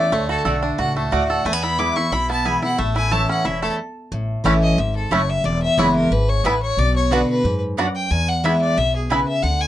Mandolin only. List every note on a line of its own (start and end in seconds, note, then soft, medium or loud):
0.45 0.55 A3 medium
0.45 0.55 F#4 medium
0.45 0.55 D5 medium
0.45 0.56 F#5 medium
1.12 1.22 A3 medium
1.12 1.22 F#4 medium
1.12 1.22 D5 loud
1.12 1.22 F#5 medium
1.78 1.88 B3 medium
1.78 1.88 E4 medium
1.78 1.89 B4 medium
1.78 1.89 G#5 medium
2.45 2.55 B3 medium
2.45 2.55 E4 loud
2.45 2.55 B4 medium
2.45 2.55 G#5 loud
3.11 3.21 A3 medium
3.11 3.21 E4 medium
3.11 3.22 C#5 medium
3.11 3.22 A5 medium
4.45 4.55 A3 medium
4.45 4.55 E4 medium
4.45 4.55 C#5 medium
4.45 4.55 A5 medium
5.11 5.21 A3 loud
5.11 5.21 E4 medium
5.11 5.21 C#5 loud
5.11 5.21 A5 medium
5.77 5.87 B3 medium
5.77 5.88 E4 medium
5.77 5.88 B4 medium
5.77 5.88 G#5 medium
6.44 6.54 B3 medium
6.44 6.54 E4 loud
6.44 6.54 B4 medium
6.44 6.54 G#5 loud
7.11 7.21 B3 medium
7.11 7.21 F#4 medium
7.11 7.21 D5 medium
7.11 7.21 F#5 medium
7.77 7.87 B3 medium
7.77 7.87 F#4 loud
7.77 7.88 D5 loud
7.77 7.88 F#5 loud
8.44 8.54 B3 medium
8.44 8.54 E4 medium
8.44 8.54 B4 medium
8.44 8.54 G#5 medium
9.10 9.20 B3 medium
9.10 9.20 E4 medium
9.10 9.20 B4 medium
9.10 9.20 G#5 loud